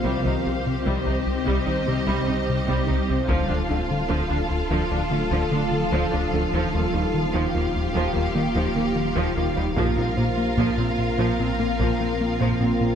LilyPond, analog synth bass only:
\new Staff \with { instrumentName = "Analog synth bass" } { \clef bass \time 4/4 \key c \dorian \tempo 4 = 74 c,16 c,16 c,16 c16 c,16 c,16 c,16 c,16 c,16 c16 c,16 c16 c16 c,16 c,16 c,16 | d,16 d,16 d,16 d16 d,16 d,16 d,16 d,16 d,16 d16 d,16 d16 d16 d,16 d,16 d,16 | ees,16 ees,16 ees,16 ees16 ees,16 ees,16 ees,16 ees,16 ees,16 ees16 ees,16 ees16 ees16 ees,16 ees,16 ees,16 | bes,16 bes,16 bes,16 bes16 bes,16 bes,16 bes,16 bes,16 bes,16 bes16 bes,16 bes16 bes16 bes,16 bes,16 bes,16 | }